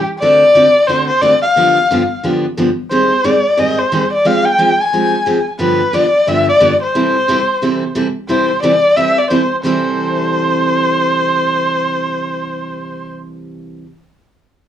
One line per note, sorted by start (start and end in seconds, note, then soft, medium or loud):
0.19 0.43 D3 medium
0.19 0.43 A3 medium
0.19 0.43 C4 medium
0.19 0.43 F#4 medium
0.19 0.43 A4 medium
0.19 0.88 D5 loud
0.55 0.66 D3 medium
0.55 0.66 A3 medium
0.55 0.67 C4 medium
0.55 0.67 F#4 medium
0.55 0.67 A4 medium
0.87 1.09 D3 medium
0.87 1.10 A3 medium
0.87 1.10 C4 medium
0.87 1.10 F#4 medium
0.87 1.10 A4 medium
0.87 1.07 C5 loud
1.08 1.23 C5 loud
1.22 1.33 D3 medium
1.22 1.34 A3 medium
1.22 1.34 C4 medium
1.22 1.34 F#4 medium
1.22 1.34 A4 medium
1.22 1.42 D5 loud
1.42 2.19 F5 loud
1.56 1.77 G2 medium
1.56 1.77 D3 medium
1.56 1.77 F3 medium
1.56 1.78 B3 medium
1.56 1.78 D4 medium
1.56 1.78 G4 medium
1.91 2.01 G2 medium
1.91 2.01 D3 medium
1.91 2.02 F3 medium
1.91 2.02 B3 medium
1.91 2.02 D4 medium
1.91 2.02 G4 medium
2.23 2.45 G2 medium
2.23 2.44 D3 medium
2.23 2.45 F3 medium
2.23 2.45 B3 medium
2.23 2.45 D4 medium
2.23 2.45 G4 medium
2.57 2.68 G2 medium
2.57 2.69 D3 medium
2.57 2.69 F3 medium
2.57 2.69 B3 medium
2.57 2.69 D4 medium
2.57 2.69 G4 medium
2.91 3.12 G#2 medium
2.91 3.12 D#3 medium
2.91 3.12 G3 medium
2.91 3.12 C4 medium
2.91 3.12 D#4 medium
2.91 3.12 G#4 medium
2.91 3.27 C5 loud
3.24 3.35 G#2 medium
3.24 3.35 D#3 medium
3.24 3.36 G3 medium
3.24 3.36 C4 medium
3.24 3.36 D#4 medium
3.24 3.36 G#4 medium
3.24 3.60 D5 medium
3.57 3.79 G#2 medium
3.57 3.79 D#3 medium
3.57 3.79 G3 medium
3.57 3.79 C4 medium
3.57 3.79 D#4 medium
3.57 3.79 G#4 medium
3.57 3.80 D#5 loud
3.79 4.12 C5 medium
3.92 4.03 G#2 medium
3.92 4.03 D#3 medium
3.92 4.03 G3 medium
3.92 4.03 C4 medium
3.92 4.04 D#4 medium
3.92 4.04 G#4 medium
4.13 4.28 D5 medium
4.25 4.46 F3 medium
4.25 4.46 G#3 medium
4.25 4.46 C4 medium
4.25 4.47 G4 medium
4.25 4.47 F5 loud
4.45 4.82 G5 loud
4.58 4.70 F3 medium
4.58 4.70 G#3 medium
4.58 4.70 C4 medium
4.58 4.70 G4 medium
4.81 5.47 G#5 loud
4.93 5.14 F3 medium
4.93 5.14 G#3 medium
4.93 5.14 C4 medium
4.93 5.14 G4 medium
5.26 5.37 F3 medium
5.26 5.37 G#3 medium
5.26 5.38 C4 medium
5.26 5.38 G4 medium
5.59 5.80 G2 medium
5.59 5.80 D3 medium
5.59 5.80 F3 medium
5.59 5.81 B3 medium
5.59 5.81 D4 medium
5.59 5.81 G4 medium
5.59 5.96 B4 medium
5.93 6.04 G2 medium
5.93 6.04 D3 medium
5.93 6.05 F3 medium
5.93 6.05 B3 medium
5.93 6.05 D4 medium
5.93 6.05 G4 medium
5.93 6.30 D5 medium
6.27 6.48 G2 medium
6.27 6.48 D3 medium
6.27 6.48 F3 medium
6.27 6.48 B3 medium
6.27 6.49 D4 medium
6.27 6.49 G4 medium
6.27 6.48 E5 medium
6.49 6.80 D5 medium
6.60 6.72 G2 medium
6.60 6.72 D3 medium
6.60 6.72 F3 medium
6.60 6.72 B3 medium
6.60 6.72 D4 medium
6.60 6.72 G4 medium
6.83 7.92 C5 medium
6.95 7.16 C3 medium
6.95 7.16 E3 medium
6.95 7.16 G3 medium
6.95 7.16 C4 medium
6.95 7.16 E4 medium
6.95 7.16 A4 medium
7.28 7.39 C3 medium
7.28 7.39 E3 medium
7.28 7.40 G3 medium
7.28 7.40 C4 medium
7.28 7.40 E4 medium
7.28 7.40 A4 medium
7.62 7.83 C3 medium
7.62 7.83 E3 medium
7.62 7.83 G3 medium
7.62 7.83 C4 medium
7.62 7.83 E4 medium
7.62 7.84 A4 medium
7.95 8.06 C3 medium
7.95 8.07 E3 medium
7.95 8.06 G3 medium
7.95 8.07 C4 medium
7.95 8.07 E4 medium
7.95 8.07 A4 medium
8.29 8.50 C3 medium
8.29 8.50 E3 medium
8.29 8.50 G3 medium
8.29 8.50 C4 medium
8.29 8.50 E4 medium
8.29 8.51 A4 medium
8.29 8.61 C5 medium
8.63 8.74 C3 medium
8.63 8.74 E3 medium
8.63 8.74 G3 medium
8.63 8.74 C4 medium
8.63 8.75 E4 medium
8.63 8.75 A4 medium
8.63 8.98 D5 loud
8.96 9.18 C3 medium
8.96 9.18 E3 medium
8.96 9.18 G3 medium
8.96 9.18 C4 medium
8.96 9.18 E4 medium
8.96 9.18 A4 medium
8.96 9.20 E5 loud
9.18 9.30 D5 medium
9.30 9.41 C3 medium
9.30 9.42 E3 medium
9.30 9.42 G3 medium
9.30 9.42 C4 medium
9.30 9.42 E4 medium
9.30 9.42 A4 medium
9.30 9.56 C5 medium
9.63 13.83 C3 medium
9.63 13.84 E3 medium
9.63 13.84 G3 medium
9.63 13.85 C4 medium
9.63 13.85 E4 medium
9.63 13.85 A4 medium
9.63 13.09 C5 loud